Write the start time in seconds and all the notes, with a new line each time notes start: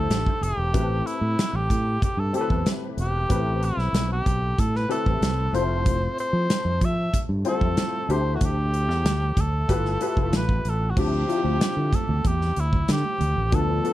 Already playing: A3 D4 E4 G4 A4 C5
0.09 A1, snare, closed hi-hat
0.26 kick
0.41 F1 G4, closed hi-hat
0.57 E1
0.73 A1 A3 C4 E4 G4 B4, kick, closed hi-hat
1.06 E4, closed hi-hat
1.21 A2
1.39 snare, closed hi-hat
1.53 A1 G4
1.70 A2, kick, closed hi-hat
2.02 G4, kick, closed hi-hat
2.17 G2 A4
2.33 A3 C4 E4 G4 A4, closed hi-hat
2.41 B4
2.50 E2, kick
2.66 snare, closed hi-hat
2.97 E1 G4, closed hi-hat
3.29 A1 A3 C4 E4 G4 B4, kick, closed hi-hat
3.63 E4, closed hi-hat
3.77 B1, snare
3.93 B1, snare, closed hi-hat
4.12 G4
4.26 B1, kick, closed hi-hat
4.58 A2 A4, kick, closed hi-hat
4.76 B4, snare
4.88 A3 C4 E4 G4 A4 B4, closed hi-hat
5.06 A1, kick
5.21 C2, snare, closed hi-hat
5.53 F1 A3 C4 E4 F4 C5, closed hi-hat
5.86 kick, closed hi-hat
6.18 C5, closed hi-hat
6.33 F3
6.50 snare, closed hi-hat
6.65 F2
6.81 F3 E5, kick, closed hi-hat
7.14 kick, closed hi-hat
7.29 G2
7.44 G3 C4 E4 F4 A4 C5, closed hi-hat
7.51 A3
7.61 F2, kick
7.77 snare, closed hi-hat
8.08 D2 A3 D4 E4 G4 C5, closed hi-hat
8.36 F#4
8.41 D2, kick, closed hi-hat
8.45 G4
8.74 closed hi-hat
8.88 E2, snare
9.05 D2, snare, closed hi-hat
9.37 D2, kick, closed hi-hat
9.41 A4
9.68 G1 A3 E4 F4 G4 B4, kick, closed hi-hat
9.85 snare
10.00 A3 E4 F4 G4 B4, closed hi-hat
10.17 F1, kick
10.32 A1, snare, closed hi-hat
10.37 B4
10.49 kick
10.65 A1, closed hi-hat
10.69 A4
10.90 F#4
10.95 D2 F3 C4 D4 E4 G4, kick, crash, muted conga
11.28 F3 C4 D4 E4 F4, closed hi-hat, muted conga
11.35 G4
11.43 D2, high conga
11.60 muted fretless electric bass stroke, snare, closed hi-hat
11.77 D3
11.93 A4, kick, closed hi-hat, high conga
12.08 D2, low conga
12.24 E2 G4, kick, closed hi-hat, muted conga, high conga
12.41 snare
12.56 D2 E4, closed hi-hat
12.73 kick, high conga
12.88 D3, snare, closed hi-hat
12.92 G4
13.04 high conga
13.18 D2, closed hi-hat, muted conga, low conga
13.36 A1, low conga
13.51 D2 F3 A3 B3 D4 A4, kick, closed hi-hat
13.83 F3 A3 B3 D4 A4, closed hi-hat